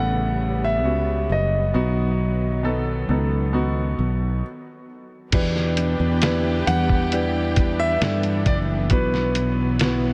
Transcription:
0.00 0.84 A1 medium
0.00 1.71 C#3 medium
0.00 1.76 C#3 medium
0.00 1.73 G3 medium
0.00 0.84 B3 medium
0.00 4.39 B3 soft
0.00 0.85 C#4 medium
0.00 1.77 A4 medium
0.00 0.65 F#5 medium
0.64 1.27 E5 medium
0.84 1.26 C#2 medium
0.84 1.69 B3 medium
0.84 1.70 C#4 medium
0.84 1.70 F#4 medium
1.29 1.71 F#1 medium
1.29 4.40 D#5 medium
1.73 3.05 B1 medium
1.73 4.40 D#3 medium
1.73 4.40 F#3 medium
1.73 2.59 B3 medium
1.73 2.60 D#4 medium
1.73 2.60 F#4 medium
2.63 3.06 B3 medium
2.63 3.06 D#4 medium
2.63 3.07 A4 medium
3.09 3.94 C#2 medium
3.09 3.51 B3 medium
3.09 3.52 D#4 medium
3.09 3.52 A4 medium
3.53 4.38 B3 medium
3.53 4.39 D#4 medium
3.53 4.39 F#4 medium
3.99 4.41 B1 medium
5.32 5.96 E2 medium
5.32 8.91 E2 medium
5.32 6.63 B2 medium
5.32 10.13 E3 medium
5.32 10.13 B3 medium
5.32 7.10 D4 medium
5.32 6.18 D4 medium
5.32 6.18 E4 medium
5.32 8.87 G4 medium
5.32 6.18 G4 medium
5.32 6.18 B4 medium
5.32 kick loud
5.32 closed hi-hat medium
5.32 crash medium
5.56 snare soft
5.77 8.45 D4 medium
5.77 closed hi-hat medium
6.00 6.63 E2 medium
6.22 7.07 D4 medium
6.22 7.07 E4 medium
6.22 7.12 E4 medium
6.22 7.08 G4 medium
6.22 7.08 B4 medium
6.22 snare loud
6.22 closed hi-hat medium
6.67 7.97 E2 medium
6.67 7.55 G3 medium
6.67 7.82 F#5 loud
6.67 closed hi-hat medium
6.89 kick medium
7.12 7.97 D4 medium
7.12 8.90 D4 medium
7.12 8.01 E4 medium
7.12 7.97 E4 medium
7.12 7.97 G4 medium
7.12 7.98 B4 medium
7.12 closed hi-hat medium
7.56 9.00 G3 medium
7.56 kick medium
7.56 closed hi-hat medium
7.80 8.48 E5 loud
8.01 8.47 G2 medium
8.01 8.87 D4 medium
8.01 9.35 E4 medium
8.01 8.87 E4 medium
8.01 8.87 G4 medium
8.01 8.87 A4 medium
8.01 snare loud
8.01 closed hi-hat medium
8.23 closed hi-hat medium
8.46 8.88 F#1 medium
8.46 9.00 D4 medium
8.46 8.57 D5 medium
8.46 kick medium
8.46 closed hi-hat medium
8.90 10.13 B1 loud
8.90 10.13 B2 medium
8.90 10.13 F#3 medium
8.90 9.76 B3 medium
8.90 9.76 E4 medium
8.90 9.76 F#4 medium
8.90 9.76 B4 medium
8.90 9.77 B4 medium
8.90 kick loud
8.90 closed hi-hat medium
9.14 snare soft
9.35 10.13 E4 medium
9.35 closed hi-hat medium
9.79 10.13 B3 medium
9.79 10.13 E4 medium
9.79 10.13 F#4 medium
9.79 10.13 B4 medium
9.79 snare loud
9.79 closed hi-hat medium

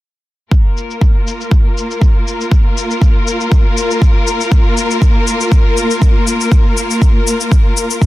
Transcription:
0.51 8.06 A#3 medium
0.51 8.06 F4 medium
0.51 8.06 A#4 medium
0.51 kick loud
0.51 cabasa soft
0.77 cabasa medium
0.91 cabasa soft
1.01 kick loud
1.01 cabasa soft
1.27 cabasa medium
1.41 cabasa soft
1.51 kick loud
1.51 cabasa soft
1.78 cabasa medium
1.91 cabasa medium
2.01 kick medium
2.01 cabasa soft
2.28 cabasa medium
2.41 cabasa medium
2.52 kick loud
2.52 cabasa soft
2.77 cabasa medium
2.91 cabasa medium
3.02 kick medium
3.02 cabasa soft
3.27 cabasa medium
3.41 cabasa soft
3.52 kick loud
3.52 cabasa soft
3.77 cabasa medium
3.91 cabasa medium
4.02 kick loud
4.02 cabasa soft
4.27 cabasa medium
4.41 cabasa medium
4.52 kick loud
4.52 cabasa soft
4.77 cabasa medium
4.91 cabasa medium
5.02 kick loud
5.02 cabasa soft
5.27 cabasa medium
5.41 cabasa medium
5.52 kick loud
5.52 cabasa soft
5.77 cabasa medium
5.91 cabasa medium
6.02 kick loud
6.02 cabasa soft
6.27 cabasa loud
6.41 cabasa medium
6.52 kick loud
6.52 cabasa soft
6.77 cabasa medium
6.91 cabasa medium
7.02 kick loud
7.02 cabasa soft
7.27 cabasa medium
7.41 cabasa medium
7.52 kick loud
7.52 cabasa soft
7.77 cabasa medium
7.91 cabasa medium
8.02 kick loud
8.02 cabasa soft

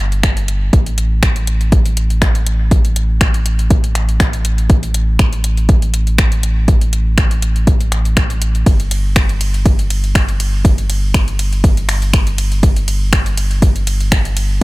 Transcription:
0.00 0.71 G1 medium
0.12 closed hi-hat soft
0.23 finger snap medium
0.23 kick loud
0.23 closed hi-hat medium
0.37 closed hi-hat soft
0.48 closed hi-hat medium
0.73 8.64 A1 medium
0.73 kick loud
0.73 closed hi-hat medium
0.86 closed hi-hat soft
0.98 closed hi-hat medium
1.23 finger snap medium
1.23 kick loud
1.23 closed hi-hat medium
1.36 closed hi-hat soft
1.47 closed hi-hat medium
1.61 closed hi-hat soft
1.72 kick loud
1.72 closed hi-hat medium
1.86 closed hi-hat soft
1.97 closed hi-hat medium
2.10 closed hi-hat soft
2.22 finger snap medium
2.22 kick loud
2.22 closed hi-hat medium
2.35 closed hi-hat soft
2.47 closed hi-hat medium
2.71 kick loud
2.71 closed hi-hat medium
2.85 closed hi-hat soft
2.96 closed hi-hat medium
3.21 finger snap medium
3.21 kick loud
3.21 closed hi-hat medium
3.34 closed hi-hat soft
3.46 closed hi-hat medium
3.59 closed hi-hat soft
3.70 kick loud
3.70 closed hi-hat medium
3.84 closed hi-hat soft
3.95 finger snap soft
3.95 closed hi-hat medium
4.09 closed hi-hat soft
4.20 finger snap medium
4.20 kick loud
4.20 closed hi-hat medium
4.33 closed hi-hat soft
4.45 closed hi-hat medium
4.58 closed hi-hat soft
4.70 kick loud
4.70 closed hi-hat medium
4.83 closed hi-hat soft
4.94 closed hi-hat medium
5.19 finger snap medium
5.19 kick loud
5.19 closed hi-hat medium
5.33 closed hi-hat soft
5.44 closed hi-hat medium
5.57 closed hi-hat soft
5.69 kick loud
5.69 closed hi-hat medium
5.82 closed hi-hat soft
5.94 closed hi-hat medium
6.07 closed hi-hat soft
6.18 finger snap medium
6.18 kick loud
6.18 closed hi-hat medium
6.32 closed hi-hat soft
6.43 closed hi-hat medium
6.68 kick loud
6.68 closed hi-hat medium
6.81 closed hi-hat soft
6.93 closed hi-hat medium
7.18 finger snap medium
7.18 kick loud
7.18 closed hi-hat medium
7.31 closed hi-hat soft
7.42 closed hi-hat medium
7.56 closed hi-hat soft
7.67 kick loud
7.67 closed hi-hat medium
7.81 closed hi-hat soft
7.92 finger snap soft
7.92 closed hi-hat medium
8.05 closed hi-hat soft
8.17 finger snap medium
8.17 kick loud
8.17 closed hi-hat medium
8.30 closed hi-hat soft
8.42 closed hi-hat medium
8.55 closed hi-hat soft
8.66 14.63 G1 medium
8.66 kick loud
8.66 closed hi-hat medium
8.66 ride soft
8.80 closed hi-hat soft
8.91 closed hi-hat medium
8.91 ride medium
9.16 finger snap medium
9.16 kick loud
9.16 closed hi-hat medium
9.16 ride soft
9.29 closed hi-hat soft
9.41 closed hi-hat medium
9.41 ride medium
9.54 closed hi-hat soft
9.66 kick loud
9.66 closed hi-hat medium
9.66 ride soft
9.79 closed hi-hat soft
9.90 closed hi-hat medium
9.90 ride medium
10.04 closed hi-hat soft
10.15 finger snap medium
10.15 kick loud
10.15 closed hi-hat medium
10.15 ride soft
10.29 closed hi-hat soft
10.40 closed hi-hat medium
10.40 ride medium
10.65 kick loud
10.65 closed hi-hat medium
10.65 ride soft
10.78 closed hi-hat soft
10.90 closed hi-hat medium
10.90 ride medium
11.14 finger snap medium
11.14 kick loud
11.14 closed hi-hat medium
11.14 ride soft
11.28 closed hi-hat soft
11.39 closed hi-hat medium
11.39 ride medium
11.53 closed hi-hat soft
11.64 kick loud
11.64 closed hi-hat medium
11.64 ride soft
11.77 closed hi-hat soft
11.89 finger snap soft
11.89 closed hi-hat medium
11.89 ride medium
12.02 closed hi-hat soft
12.13 finger snap medium
12.13 kick loud
12.13 closed hi-hat medium
12.13 ride soft
12.27 closed hi-hat soft
12.38 closed hi-hat medium
12.38 ride medium
12.52 closed hi-hat soft
12.63 kick loud
12.63 closed hi-hat medium
12.63 ride soft
12.76 closed hi-hat soft
12.88 closed hi-hat medium
12.88 ride medium
13.13 finger snap medium
13.13 kick loud
13.13 closed hi-hat medium
13.13 ride soft
13.26 closed hi-hat soft
13.37 closed hi-hat medium
13.37 ride medium
13.51 closed hi-hat soft
13.62 kick loud
13.62 closed hi-hat medium
13.62 ride soft
13.76 closed hi-hat soft
13.87 closed hi-hat medium
13.87 ride medium
14.00 closed hi-hat soft
14.12 finger snap medium
14.12 kick loud
14.12 closed hi-hat medium
14.12 ride soft
14.25 closed hi-hat soft
14.37 closed hi-hat medium
14.37 ride medium

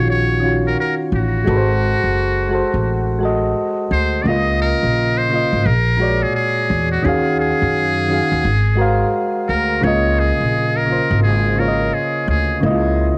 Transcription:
0.00 0.73 A#1 loud
0.00 0.40 D#3 loud
0.00 0.41 C#4 medium
0.00 0.43 F4 medium
0.00 0.46 F#4 loud
0.10 0.61 C#5 loud
0.40 1.09 D#3 medium
0.40 1.10 C#4 medium
0.40 1.11 F4 medium
0.46 1.12 F#4 medium
0.67 0.77 A#4 medium
0.80 0.95 A#4 medium
1.12 1.40 A1 medium
1.12 3.19 F#4 loud
1.44 1.94 G#1 loud
1.44 2.14 G#3 medium
1.44 2.15 F#4 medium
1.48 2.16 A4 medium
1.48 1.57 B4 medium
1.57 2.20 C5 loud
2.04 2.61 F#1 medium
2.49 2.98 G#3 medium
2.49 2.99 F#4 medium
2.53 3.00 A4 medium
2.53 3.01 C5 medium
2.74 3.52 A1 medium
3.19 3.88 G#3 medium
3.19 3.89 F#4 medium
3.23 3.90 A4 medium
3.23 3.91 D#5 medium
3.91 4.19 D2 medium
3.91 4.24 C5 loud
4.23 4.72 C#2 medium
4.23 4.93 C#3 medium
4.23 4.94 A#3 medium
4.23 4.29 D5 medium
4.27 4.95 F4 medium
4.27 4.61 D#5 loud
4.27 4.96 D#5 loud
4.62 5.19 A#4 loud
4.83 5.40 A#1 medium
5.18 5.67 C5 loud
5.30 5.65 C#3 medium
5.30 5.66 A#3 medium
5.34 5.67 F4 medium
5.34 5.68 D#5 medium
5.53 5.63 G#1 medium
5.66 6.23 A#1 loud
5.66 6.24 A#4 loud
5.97 6.67 A#2 medium
5.97 6.68 G#3 medium
5.97 6.68 F#4 medium
6.01 6.69 C#5 medium
6.01 6.70 D5 medium
6.23 6.34 G#4 medium
6.35 6.88 G#4 loud
6.70 6.99 E2 medium
6.92 7.07 F#4 medium
7.03 7.52 D#2 loud
7.03 7.72 D#3 loud
7.03 7.73 C#4 medium
7.03 7.74 F#4 loud
7.03 7.39 G#4 loud
7.07 7.74 G#4 medium
7.07 7.75 F5 loud
7.39 9.20 G#4 loud
7.62 8.19 F#2 medium
8.08 8.44 D#3 medium
8.08 8.44 C#4 medium
8.08 8.45 F#4 medium
8.13 8.46 G#4 medium
8.13 8.47 F5 medium
8.32 8.42 D#2 loud
8.45 9.02 G#1 medium
8.75 9.46 G#3 medium
8.75 9.46 F#4 medium
8.75 9.47 A#4 medium
8.80 9.48 C5 medium
8.80 9.49 F5 loud
9.49 9.78 D2 medium
9.49 9.85 A#4 loud
9.81 10.30 C#2 loud
9.81 10.51 C#3 loud
9.81 10.52 A#3 medium
9.81 10.21 C#5 loud
9.85 10.53 F4 medium
9.85 10.54 D#5 loud
10.19 10.78 G#4 loud
10.41 10.98 A#1 medium
10.77 11.23 A#4 loud
10.86 11.35 C#3 medium
10.86 11.36 A#3 medium
10.90 11.37 F4 medium
10.90 11.38 C5 medium
11.11 11.89 G#1 loud
11.23 11.61 G#4 medium
11.56 12.25 C#3 medium
11.56 12.26 A#3 medium
11.56 12.27 F4 medium
11.56 11.95 A#4 loud
11.61 11.68 C#5 medium
11.68 12.31 D#5 medium
11.94 12.28 G#4 loud
12.28 12.56 D2 loud
12.28 12.61 G#4 medium
12.60 13.10 C#2 loud
12.60 13.18 C#3 loud
12.60 13.18 A#3 medium
12.64 12.72 E4 medium
12.64 13.18 D#5 loud
12.71 13.18 F4 medium

